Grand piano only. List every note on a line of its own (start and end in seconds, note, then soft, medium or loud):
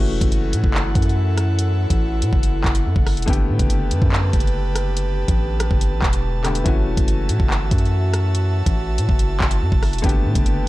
0.00 3.23 E3 medium
0.00 3.23 A3 medium
0.00 3.24 C#4 medium
0.00 3.24 F#4 medium
3.26 6.40 D3 medium
3.26 6.40 A3 medium
3.26 6.41 B3 medium
3.26 6.41 G4 medium
6.44 6.65 D3 medium
6.44 6.64 A3 medium
6.44 6.66 B3 medium
6.44 6.66 G4 medium
6.64 9.99 E3 medium
6.64 9.99 A3 medium
6.64 10.00 C#4 medium
6.64 10.01 F#4 medium
10.02 10.68 D3 medium
10.02 10.68 A3 medium
10.02 10.68 B3 medium
10.02 10.68 G4 medium